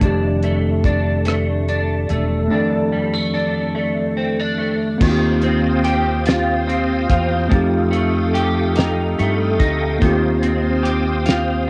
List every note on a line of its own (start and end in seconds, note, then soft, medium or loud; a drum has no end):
0.00 2.06 F1 loud
0.00 2.49 F2 medium
0.00 2.48 D#3 medium
0.00 2.46 A3 medium
0.00 2.47 D4 medium
0.00 0.84 D4 medium
0.00 kick loud
0.00 closed hi-hat medium
0.05 2.49 G4 medium
0.42 1.25 A3 medium
0.42 closed hi-hat medium
0.84 1.68 D4 medium
0.84 kick loud
0.84 closed hi-hat medium
1.25 2.09 A3 medium
1.25 cross-stick loud
1.25 closed hi-hat medium
1.69 2.50 D4 medium
1.69 closed hi-hat soft
2.09 2.48 E1 medium
2.09 2.92 A3 medium
2.09 closed hi-hat soft
2.48 5.01 F2 medium
2.48 4.96 A3 medium
2.48 4.97 D4 medium
2.48 3.33 D4 medium
2.52 4.98 D#3 medium
2.52 4.99 A4 medium
2.92 3.14 G3 medium
3.14 3.74 A3 soft
3.34 4.17 D4 medium
3.75 4.57 A3 medium
4.17 4.40 C4 medium
4.40 5.10 D4 medium
4.58 5.09 A3 medium
4.98 7.06 D#2 loud
4.98 7.46 A#3 medium
4.98 7.47 C4 medium
4.98 7.48 C5 medium
4.98 11.70 F5 medium
4.98 11.70 G5 medium
4.98 9.97 D#6 medium
4.98 kick loud
4.98 crash loud
5.02 7.53 D#3 medium
5.02 7.48 F4 medium
5.02 5.10 F#4 medium
5.11 7.52 G4 medium
5.42 6.67 C4 medium
5.42 closed hi-hat soft
5.84 7.94 G4 medium
5.84 closed hi-hat medium
6.26 7.09 F4 medium
6.26 snare loud
6.26 closed hi-hat medium
6.67 7.91 C4 medium
6.67 closed hi-hat medium
7.10 7.48 E2 medium
7.10 8.37 F4 medium
7.10 kick loud
7.10 closed hi-hat medium
7.48 9.14 F2 loud
7.48 10.04 F3 medium
7.48 9.96 A3 medium
7.48 9.97 C4 medium
7.48 9.98 A4 medium
7.48 kick loud
7.48 closed hi-hat medium
7.53 9.98 D#4 medium
7.53 9.99 G4 medium
7.91 9.17 A3 medium
7.91 closed hi-hat medium
8.34 10.83 G4 medium
8.34 closed hi-hat medium
8.76 9.59 D#4 medium
8.76 snare loud
8.76 closed hi-hat medium
9.19 9.61 G2 loud
9.19 10.10 A3 medium
9.19 closed hi-hat medium
9.59 9.98 D2 medium
9.59 11.25 D#4 medium
9.59 kick medium
9.59 closed hi-hat medium
10.00 11.70 D#2 loud
10.00 11.70 D#3 medium
10.00 11.70 A#3 medium
10.00 11.70 C4 medium
10.00 11.70 C5 medium
10.00 11.70 D#6 medium
10.00 kick loud
10.00 closed hi-hat medium
10.04 11.70 F4 medium
10.04 11.70 G4 medium
10.42 11.67 C4 medium
10.42 closed hi-hat medium
10.83 11.70 G4 medium
10.83 closed hi-hat medium
11.26 11.70 F4 medium
11.26 snare loud
11.26 closed hi-hat medium